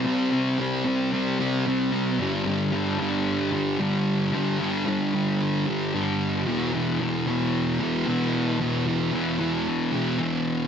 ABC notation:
X:1
M:4/4
L:1/8
Q:1/4=112
K:G
V:1 name="Distorted electric guitar" clef=bass
[C,G,C] [G,C] [C,G,C] [G,C] [C,G,C] [G,C] [C,G,C] [G,C] | [G,,D,G,] [D,G,] [G,,D,G,] [D,G,]2 [D,G,] [G,,D,G,]2 | [G,,D,G,] [D,G,] [G,,D,G,] [D,G,]2 [D,G,] [G,,D,G,]2 | [E,,B,,E,] [B,,E,] [E,,B,,E,] [B,,E,]2 [B,,E,] [E,,B,,E,]2 |
[E,,B,,E,] [B,,E,] [E,,B,,E,] [B,,E,]2 [B,,E,] [E,,B,,E,]2 |]